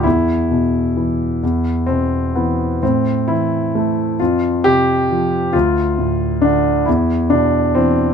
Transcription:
<<
  \new Staff \with { instrumentName = "Grand piano" } { \time 6/8 \key e \phrygian \tempo 4. = 44 e'2 c'8 b8 | c'8 e'4 f'8 g'4 | f'4 d'8 e'8 d'8 c'8 | }
  \new Staff \with { instrumentName = "Grand piano" } { \clef bass \time 6/8 \key e \phrygian e,8 b,8 e8 e,8 b,8 e8 | a,8 e8 a8 f,8 c8 f8 | d,8 a,8 d8 e,8 b,8 e8 | }
>>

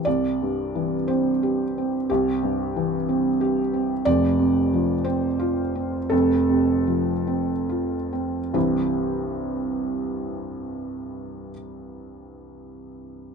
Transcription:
<<
  \new Staff \with { instrumentName = "Felt piano" } { \time 6/8 \key c \major \tempo 4. = 55 d''4. c''4. | g'2~ g'8 r8 | d''4. c''4. | a'2~ a'8 r8 |
<c, g, e g c' e' c''>2.~ | <c, g, e g c' e' c''>2. | }
  \new Staff \with { instrumentName = "Felt piano" } { \clef bass \time 6/8 \key c \major c,8 g,8 e8 c'8 g'8 c'8 | c,8 g,8 e8 c'8 g'8 c'8 | <f,, f,>8 c8 f8 c'8 f'8 c'8 | <f,, f,>8 c8 f8 c'8 f'8 c'8 |
r2. | r2. | }
>>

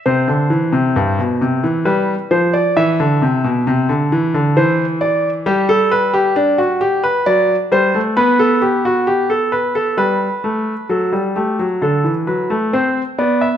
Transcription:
<<
  \new Staff \with { instrumentName = "Grand piano" } { \time 3/4 \key c \major \tempo 4 = 66 c''2 b'8 c''16 d''16 | e''2 c''8 d''8 | g'16 a'16 b'16 g'16 d'16 fis'16 g'16 b'16 d''8 c''8 | b'16 a'16 g'16 fis'16 g'16 a'16 b'16 a'16 b'4 |
a'8 g'8 a'8 b'8 c''8 d''16 e''16 | }
  \new Staff \with { instrumentName = "Grand piano" } { \clef bass \time 3/4 \key c \major c16 d16 e16 c16 g,16 b,16 c16 e16 g8 f8 | e16 d16 c16 b,16 c16 d16 e16 d16 e4 | g2 fis8 g16 a16 | b2 g8 a8 |
fis16 g16 a16 fis16 d16 e16 fis16 a16 c'8 b8 | }
>>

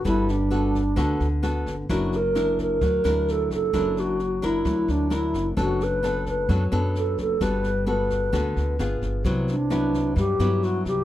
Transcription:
<<
  \new Staff \with { instrumentName = "Alto flute" } { \time 4/4 \key g \major \tempo 4 = 131 e'8 d'2. r8 | fis'8 ais'4 ais'4. a'8 a'8~ | a'8 fis'4 e'4 d'8 e'8. r16 | fis'8 b'4 b'4 r8 a'8 a'8 |
b'4 b'2~ b'8 r8 | r8 d'4. g'4 fis'8 g'8 | }
  \new Staff \with { instrumentName = "Nylon-string guitar" } { \time 4/4 \key g \major << { <b fis' a'>8 r8 <b fis' a'>8 r8 <b fis' a'>8 r8 <b fis' a'>8 r8 | <d' e' ais'>8 r8 <d' e' ais'>4 r8 <d' e' ais'>4. | <d' e' ais'>4 r8 <d' e' ais'>4. <d' e' ais'>4 | <b d' a'>4 <b d' a'>4 <b d' a'>8 <b d' a'>4. |
<b fis' a'>8 r8 <b fis' a'>4 <b fis' a'>4 <b f' aes'>4 | <fis b e'>8 r8 <fis b e'>4. <fis b e'>4. | } \\ { g2 d2 | fis2 fis2 | fis2 fis2 | fis2 fis2 |
g2 d4 r4 | c2 g,2 | } >> }
  \new Staff \with { instrumentName = "Upright bass" } { \clef bass \time 4/4 \key g \major g,,2 d,8 d,4 g,,8 | fis,,2 d,8 d,4 fis,,8 | fis,,2 d,8 d,4 fis,,8 | fis,,2 fis,8 fis,4 fis,,8 |
g,,2 d,8 d,8 g,,8 g,,8 | c,2 g,8 g,4 c,8 | }
  \new DrumStaff \with { instrumentName = "Drums" } \drummode { \time 4/4 <bd ss sn>8 sn8 sn8 <bd sn>8 <bd ss sn>8 sn8 <ss sn>8 <bd sn>8 | <bd sn>8 sn8 <ss sn>8 <bd sn>8 <bd sn>8 <ss sn>8 sn8 <bd sn>8 | <bd ss sn>8 sn8 sn8 <bd sn>8 <bd ss sn>8 sn8 <ss sn>8 <bd sn>8 | <bd sn>8 sn8 <ss sn>8 <bd sn>8 <bd sn>8 <ss sn>8 sn8 <bd sn>8 |
<bd ss sn>8 sn8 sn8 <bd sn>8 <bd ss sn>8 sn8 <ss sn>8 <bd sn>8 | <bd sn>8 sn8 <ss sn>8 <bd sn>8 <bd sn>8 <ss sn>8 sn8 <bd sn>8 | }
>>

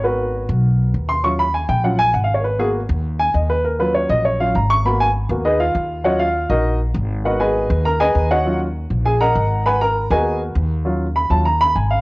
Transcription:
<<
  \new Staff \with { instrumentName = "Upright piano" } { \time 4/4 \key ees \minor \tempo 4 = 200 << { ces''4. r2 c'''8 | des'''8 ces'''8 aes''8 g''8 ges''8 aes''8 \tuplet 3/2 { ges''8 f''8 des''8 } | <bes' ces''>8 aes'8 r4. aes''8 ees''8 ces''8 | bes'8 ces''8 des''8 ees''8 des''8 f''8 bes''8 des'''8 |
ces'''8 aes''8 r4 <ees' aes' ces'' ees''>8 <f' f''>4. | <ges' des'' ees'' ges''>8 <f' f''>4 <ees' ges' bes' ees''>4 r4. | <ges' ces'' ees'' ges''>8 <aes' ces'' ees'' aes''>4. <bes' bes''>8 <aes' ces'' ees'' aes''>4 <ges' des'' ees'' ges''>8~ | <ges' des'' ees'' ges''>8 r4. <aes' aes''>8 <bes' ees'' ges'' bes''>4. |
<ces'' ges'' aes'' ces'''>8 <bes' bes''>4 <aes' ces'' ees'' aes''>4 r4. | r4 ces'''8 a''8 bes''8 ces'''8 aes''8 f''8 | } \\ { <ces' ges' bes'>1 | <ges des' f'>8 r4. <ges des' f'>8 r4. | r8 <bes ces' ges'>8 r2. | r8 <ges des' f'>2 <ges des' f'>8 r4 |
<bes ces' ges'>8 r4 <bes ces' ges'>8 r2 | <ges des' f'>8 r2. r8 | <ces' bes'>4. r2 r8 | <ges des' f'>8 r2. r8 |
r4. <ces' ges' bes'>4. r4 | <ges des' f'>8 r4 <ges des' f'>8 r2 | } >> }
  \new Staff \with { instrumentName = "Upright bass" } { \clef bass \time 4/4 \key ees \minor aes,,4. ces,4. ees,4~ | ees,4. bes,,4. aes,,4~ | aes,,4. ees,4. ees,4~ | ees,4. bes,,4. aes,,4~ |
aes,,4. ees,4. ees,4~ | ees,4. bes,,4. aes,,4~ | aes,,4. ees,4. ees,4~ | ees,4. bes,,4. aes,,4~ |
aes,,4. ees,4. ees,4~ | ees,4. ees,4. aes,,4 | }
>>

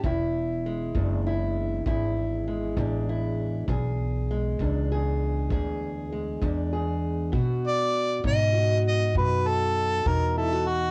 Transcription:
<<
  \new Staff \with { instrumentName = "Harmonica" } { \time 12/8 \key e \mixolydian \tempo 4. = 66 r1. | r1. | r8 d''4 dis''4 dis''8 b'8 a'4 ais'8 a'8 fis'8 | }
  \new Staff \with { instrumentName = "Steel-string acoustic guitar" } { \time 12/8 \key e \mixolydian << { e'4 gis8 d'8 e'4 e'4 gis8 d'8 e'4 | gis'4 gis8 d'8 gis'4 gis'4 gis8 d'8 gis'4 | fis'4. dis'8 fis'4 fis'4. dis'8 e'16 fis'8. | } \\ { e,4. e,4. e,4. e,4. | e,4. e,4. e,4. e,4. | b,4. b,4. b,4. b,4. | } >> }
  \new Staff \with { instrumentName = "Upright bass" } { \clef bass \time 12/8 \key e \mixolydian e,,4. fis,,4. gis,,4. a,,4. | b,,4. cis,4. d,4. e,4. | b,4. gis,4. fis,4. e,4. | }
  \new DrumStaff \with { instrumentName = "Drums" } \drummode { \time 12/8 bd4. bd4. bd4. bd4. | bd4. bd4. bd4. bd4. | bd4. bd4. bd4. bd4. | }
>>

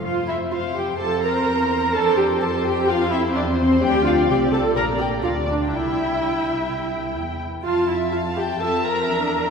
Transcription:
<<
  \new Staff \with { instrumentName = "Violin section" } { \time 4/4 \key f \major \tempo 4 = 126 f''8 e''8 f''8 g''8 a''8 bes''4. | a''8 g''8 a''8 g''8 f''8 e''8 d''8 c''8 | g''8 f''8 g''8 a''8 bes''8 g''8 f''8 d''8 | e''2. r4 |
f''8 e''8 f''8 g''8 a''8 bes''4. | }
  \new Staff \with { instrumentName = "Violin section" } { \time 4/4 \key f \major c''4 c''4 c''2 | c''4 c''4 c''2 | d''2 d''4 d''4 | g''2.~ g''8 r8 |
a''4 a''4 e''2 | }
  \new Staff \with { instrumentName = "Viola section" } { \time 4/4 \key f \major f'8 e'8 f'8 g'8 a'8 bes'4. | a'8 g'8 a'8 g'8 f'8 e'8 d'8 c'8 | g'8 f'8 g'8 a'8 bes'8 g'8 f'8 d'8 | e'2. r4 |
f'8 e'8 f'8 g'8 a'8 bes'4. | }
  \new Staff \with { instrumentName = "Cello section" } { \time 4/4 \key f \major r2 c'2 | d'4 c'2. | d'4 c'4 bes4 d'4 | e'2.~ e'8 r8 |
r2 c'4 d'4 | }
  \new Staff \with { instrumentName = "Double bass section" } { \clef bass \time 4/4 \key f \major f,2 f,4 e,4 | f,2. e,4 | d,4 c,4 bes,,4 d,4 | c,2. e,8 r8 |
f,2 f,4 e,4 | }
>>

